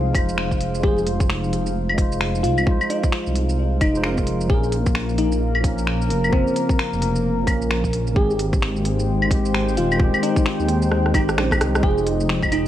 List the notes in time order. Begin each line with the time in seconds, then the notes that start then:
Already playing: C2 F3 G#3 D#4 F4 G#4 C5 F5
0.11 G#3 D#4, kick
0.15 F1 F4 C5, open hi-hat, claves
0.29 shaker
0.38 finger snap
0.51 kick, shaker
0.61 open hi-hat
0.75 shaker
0.79 F1 G#3 D#4, kick
0.84 F4 G#4
0.88 C5
0.98 shaker
1.07 open hi-hat
1.20 kick, shaker
1.30 finger snap
1.44 shaker
1.53 open hi-hat
1.66 shaker
1.89 claves
1.94 G#3 D#4, kick
1.98 F4 C5, open hi-hat
2.12 shaker
2.21 finger snap
2.35 shaker
2.43 C2 F4, open hi-hat
2.58 claves, shaker
2.63 G#3 D#4, kick
2.68 F4 C5
2.81 claves, shaker
2.90 D#4, open hi-hat
3.03 kick, shaker
3.12 finger snap
3.27 C2, shaker
3.35 open hi-hat
3.49 shaker
3.81 F1 D#4, kick, open hi-hat, claves
3.93 G#3 D#4 F4 C5, shaker
4.02 G#3 D#4 F4 A#4, finger snap
4.17 kick, shaker
4.27 open hi-hat
4.41 shaker
4.46 A#1 F3 A#3 G#4, kick
4.52 C#4 A#4
4.63 shaker
4.70 A#4, open hi-hat
4.86 kick, shaker
4.95 finger snap
5.09 shaker
5.18 D#4, open hi-hat
5.32 shaker
5.55 claves
5.60 F3 A#3, kick, open hi-hat
5.66 C#4 A#4
5.78 shaker
5.87 finger snap
6.02 shaker
6.10 F1, open hi-hat
6.24 claves, shaker
6.29 F3 A#3 C4, kick
6.34 C#3 A#4
6.47 shaker
6.56 open hi-hat
6.69 kick, shaker
6.79 finger snap
6.93 F1, shaker
7.02 open hi-hat
7.16 shaker
7.43 A#1 F3 A#3, kick
7.47 C#4 A#4, open hi-hat, claves
7.62 shaker
7.71 finger snap
7.84 kick, shaker
7.93 open hi-hat
8.07 shaker
8.12 G#1 D#3 G#3, kick
8.16 G#3 C4 G4 G#4
8.30 shaker
8.38 D#4, open hi-hat
8.53 C5, kick, shaker
8.62 finger snap
8.67 G5
8.76 shaker
8.85 open hi-hat
9.00 shaker
9.22 claves
9.27 D#3 G#3, kick
9.31 C4 G4, open hi-hat
9.45 shaker
9.54 finger snap
9.68 shaker
9.77 D#1 F4, open hi-hat
9.92 claves, shaker
9.96 D#3 G#3, kick
10.01 C4 G4
10.14 claves, shaker
10.23 D#4, open hi-hat
10.36 kick, shaker
10.46 finger snap
10.60 D#2, shaker
10.69 open hi-hat
10.82 shaker
10.92 cross-stick
11.06 cross-stick
11.11 G#1 D#3 G#3 D#4, kick, open hi-hat, claves
11.16 C4 G4
11.29 cross-stick, shaker
11.37 A#1, finger snap, cross-stick
11.51 kick, cross-stick, claves, shaker
11.61 C2, cross-stick, open hi-hat
11.75 cross-stick, shaker
11.80 F1 F3 G#3 D#4 G#4, kick
11.85 F4 C5
11.98 shaker
12.07 open hi-hat
12.20 shaker
12.29 G#4, finger snap
12.43 kick, claves, shaker
12.52 D#4, open hi-hat, claves
12.60 F5